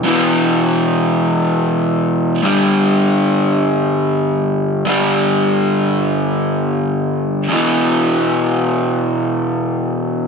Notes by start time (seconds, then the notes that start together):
0.04 E2 B2 E3
2.43 G2 D3 G3
4.85 G2 D3 G3
7.49 E2 B2
7.54 E3